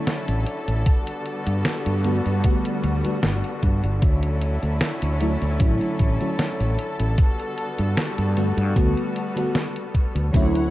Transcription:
Already playing: D3 F#3 C#4 E4 A4
0.07 snare, closed hi-hat
0.28 A1, closed hi-hat
0.47 closed hi-hat
0.68 A1, closed hi-hat
0.86 G3 B3 F#4, kick, closed hi-hat
1.07 closed hi-hat
1.26 closed hi-hat
1.47 G2, closed hi-hat
1.65 snare, closed hi-hat
1.86 G2, closed hi-hat
2.04 D3 G3 A3 B3 F#4, closed hi-hat
2.25 G2, closed hi-hat
2.44 D3 G3 A3 B3 F#4, kick, closed hi-hat
2.65 closed hi-hat
2.83 D2, closed hi-hat
3.04 D3 G3 A3 B3 F#4, closed hi-hat
3.23 G1, snare, closed hi-hat
3.44 closed hi-hat
3.63 G2, kick, closed hi-hat
3.84 G1, closed hi-hat
4.02 D2 F#3 C#4 E4 A4, kick, closed hi-hat
4.23 closed hi-hat
4.41 closed hi-hat
4.62 D2, closed hi-hat
4.81 snare, closed hi-hat
5.02 D2, closed hi-hat
5.20 D3 F#3 A3 C#4 E4, closed hi-hat
5.42 D2, closed hi-hat
5.59 A1 D3 F#3 A3 C#4 E4, kick, closed hi-hat
5.81 closed hi-hat
5.99 A1, kick, closed hi-hat
6.19 D3 F#3 A3 C#4 E4, closed hi-hat
6.39 snare, closed hi-hat
6.60 A1, closed hi-hat
6.79 closed hi-hat
7.00 A1, closed hi-hat
7.18 G3 B3 F#4, kick, closed hi-hat
7.40 closed hi-hat
7.58 closed hi-hat
7.79 G2, closed hi-hat
7.97 snare, closed hi-hat
8.18 G2, closed hi-hat
8.36 D3 G3 A3 B3 F#4, closed hi-hat
8.57 G2, closed hi-hat
8.76 D2 D3 G3 A3 B3 F#4, kick, closed hi-hat
8.97 closed hi-hat
9.16 closed hi-hat
9.36 D3 G3 A3 B3 F#4, closed hi-hat
9.55 snare, closed hi-hat
9.76 closed hi-hat
9.95 kick, closed hi-hat
10.15 D2, closed hi-hat
10.33 D2 D3 F#3 A3 C#4 E4 C#5 F#5, kick, closed hi-hat, cabasa
10.55 closed hi-hat

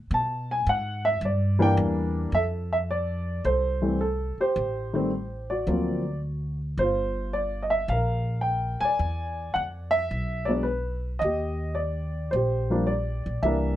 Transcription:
0.11 B2 A5
0.51 G#5
0.67 G#2 F#5
1.05 E5
1.21 G2
1.25 D5
1.59 E3 G3 A#3 D4 G5
1.77 E2
2.32 F2 A4 E5
2.73 E5
2.91 D5
3.44 C2 A4 C5
3.82 E3 G3 A3 C4
4.01 A4
4.38 G4 C5, muted upright bass stroke
4.56 A1
4.93 D#3 G3 A3 C4
5.50 F#4 D5
5.67 D2 F3 F#3 A#3 C4
6.78 G1 F4 C5
7.33 D5
7.63 D#5
7.70 E5
7.88 A#1 A#4 F5
8.41 G5
8.81 G#5, muted upright bass stroke
8.85 D5
8.99 E2
9.54 F2 F#5
9.91 E5
10.11 B1
10.45 F#3 G#3 B3 D5
10.49 D4
10.63 B4
11.19 D#2 D#5
11.24 G4
11.75 D5
12.31 A#1 C5
12.36 G4
12.70 F3 G3 A#3 D4
12.87 D5
13.26 A#1
13.43 C2 E3 G3 A#3 D4 A#4 E5

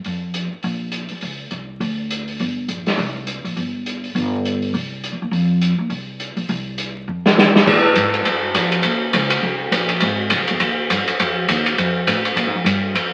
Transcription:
0.04 F2, open hi-hat
0.34 closed hi-hat
0.52 muted upright bass stroke
0.63 A#1, open hi-hat
0.92 closed hi-hat
1.09 muted upright bass stroke, open hi-hat
1.21 C#2, open hi-hat
1.51 C2, closed hi-hat
1.80 D2, open hi-hat
2.10 closed hi-hat
2.28 open hi-hat
2.40 G1, open hi-hat
2.68 A#1, closed hi-hat
2.86 snare, open hi-hat
2.98 C2, open hi-hat
3.27 closed hi-hat
3.44 A#1, open hi-hat
3.56 G1, open hi-hat
3.86 closed hi-hat
4.04 open hi-hat
4.15 G1, open hi-hat
4.45 closed hi-hat
4.62 open hi-hat
4.74 C2, open hi-hat
5.04 closed hi-hat
5.12 E2
5.22 D#2
5.31 F2, open hi-hat
5.62 closed hi-hat
5.78 D#2
5.90 C2, open hi-hat
6.20 closed hi-hat
6.37 A#1, open hi-hat
6.49 C2, open hi-hat
6.78 closed hi-hat
7.08 F2
7.26 snare
7.38 snare
7.54 muted upright bass stroke, snare
7.67 A#2, kick, crash
7.96 G#2, hi-hat pedal, ride
8.14 ride
8.25 G2, ride
8.54 F2, hi-hat pedal, ride
8.72 ride
8.83 D#2, ride
9.13 C#2, hi-hat pedal, ride
9.30 ride
9.43 C2
9.71 A#1, hi-hat pedal, ride
9.89 ride
10.00 G#1, ride
10.30 C2, hi-hat pedal, ride
10.40 G#1
10.48 G1, ride
10.60 D#2, ride
10.90 G2, hi-hat pedal, ride
11.08 muted upright bass stroke, ride
11.20 F2, ride
11.48 D#2, hi-hat pedal, ride
11.66 ride
11.78 F2, ride
12.07 A2, hi-hat pedal, ride
12.25 ride
12.36 A#2, ride
12.47 G#2
12.55 F2
12.64 G2, hi-hat pedal, ride
12.94 F2, ride

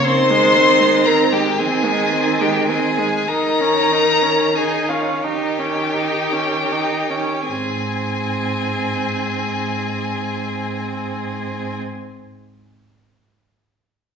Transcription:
0.05 D#3 C4 C5 C6
0.30 G#3
0.56 C4
0.81 G#3
1.06 C4 A#4 A#5
1.32 G#3 G4 G5
1.58 D#3 C4 G#4 G#5
1.85 G#3
2.13 C4
2.41 G#3 G4 G5
2.68 C4 G#4 G#5
2.98 G#3
3.28 D#3 D#4 A#4 A#5
3.61 C#4
3.91 D#4
4.22 C#4
4.56 D#4 G#4 G#5
4.88 C#4 F4 F5
5.22 D#3 D#4 G4 G5
5.59 C#4
5.95 D#4
6.32 C#4
6.71 D#4
7.10 C#4
7.47 G#2 C4 G#4 G#5

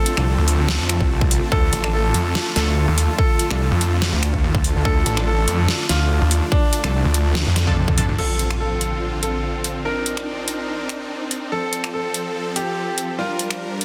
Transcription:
Already playing: D3 A3 C4 F4 A4 A5
0.06 closed hi-hat
0.17 C2 F3 D4 A4, finger snap
0.38 D2
0.48 open hi-hat
0.59 D2
0.69 snare
0.80 F2
0.89 finger snap, closed hi-hat
1.00 C2, kick
1.21 kick
1.31 open hi-hat
1.52 D2 F4 A4, kick
1.73 A1, closed hi-hat
1.84 F3 D4 A4, finger snap
1.94 A4
2.14 F2, closed hi-hat
2.35 snare
2.56 D2 A4, snare, closed hi-hat
2.88 D#2
2.98 open hi-hat
3.18 A4, kick
3.39 closed hi-hat
3.50 C2 F3 D4 A4, finger snap
3.71 F2
3.81 closed hi-hat
4.02 snare
4.13 D2
4.23 finger snap, closed hi-hat
4.34 kick
4.44 D#2
4.55 D2, kick
4.64 open hi-hat
4.75 D2
4.85 D2 D4 A4, kick
5.06 A1, closed hi-hat
5.17 F3 D4 A4, finger snap
5.27 A4
5.48 F2, closed hi-hat
5.68 snare
5.89 D2 F4, snare, closed hi-hat
6.21 D#2
6.31 open hi-hat
6.52 D4, kick
6.73 closed hi-hat
6.84 C2 F3 D4 A4, finger snap, closed hi-hat
7.05 D2
7.14 closed hi-hat
7.35 snare, high tom
7.46 F2, high tom
7.56 finger snap, snare, closed hi-hat
7.67 F3 D4 A4, kick, mid tom
7.77 mid tom
7.88 kick, mid tom
7.98 F3 D4 A4, mid tom, open hi-hat
8.09 D2, mid tom
8.18 D3 C4 F4 A4, crash, impact
8.29 D5
8.39 closed hi-hat
8.51 finger snap, closed hi-hat
8.60 A4
8.81 closed hi-hat
8.94 C6
9.23 A4, closed hi-hat
9.64 closed hi-hat
9.85 D4 D#4 A#4
10.06 closed hi-hat
10.17 finger snap, closed hi-hat
10.48 closed hi-hat
10.89 finger snap, closed hi-hat
11.31 closed hi-hat
11.52 F3 F4 A4
11.73 closed hi-hat
11.84 finger snap, closed hi-hat
11.94 A4 A5
12.07 C5
12.14 closed hi-hat
12.56 G4, closed hi-hat
12.98 closed hi-hat
13.19 G3 D4 F4 G4 A#4
13.39 closed hi-hat
13.50 finger snap, closed hi-hat
13.81 closed hi-hat

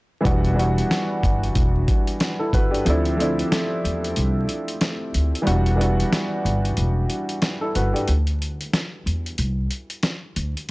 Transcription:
0.20 E3 G3 B3 D4
0.25 E1 F#4, kick, closed hi-hat
0.45 closed hi-hat
0.54 E3 G3 B3 D4
0.59 F#4, closed hi-hat
0.78 closed hi-hat
0.91 snare, closed hi-hat
1.23 G1, kick, closed hi-hat
1.44 closed hi-hat
1.55 E1, kick, closed hi-hat
1.88 kick, closed hi-hat
2.07 closed hi-hat
2.20 snare, closed hi-hat
2.39 E4 A4
2.53 G1 F#4 B4, kick, closed hi-hat
2.71 D4 G4, closed hi-hat
2.85 D2 F3 A3 C4 D4, closed hi-hat
2.90 E4
3.05 closed hi-hat
3.17 F3 A3 C4 D4, closed hi-hat
3.22 E4
3.39 closed hi-hat
3.52 snare, closed hi-hat
3.84 E2, closed hi-hat
4.04 closed hi-hat
4.16 C2, closed hi-hat
4.49 closed hi-hat
4.68 closed hi-hat
4.81 snare, closed hi-hat
5.14 D2, closed hi-hat
5.35 closed hi-hat
5.42 E3 G3 B3 D4
5.47 E1 F#4, closed hi-hat
5.66 closed hi-hat
5.76 E3 G3 B3 D4
5.81 F#4, closed hi-hat
6.00 closed hi-hat
6.12 snare, closed hi-hat
6.45 G1, closed hi-hat
6.65 closed hi-hat
6.77 E1, closed hi-hat
7.10 closed hi-hat
7.29 closed hi-hat
7.42 snare, closed hi-hat
7.61 E4 A4
7.75 G1 F#4 B4, closed hi-hat
7.93 D4 G4, closed hi-hat
8.08 D2, closed hi-hat
8.27 closed hi-hat
8.42 closed hi-hat
8.61 closed hi-hat
8.73 snare, closed hi-hat
9.06 E2, closed hi-hat
9.26 closed hi-hat
9.38 C2, closed hi-hat
9.71 closed hi-hat
9.90 closed hi-hat
10.03 snare, closed hi-hat
10.36 D2, closed hi-hat
10.57 closed hi-hat

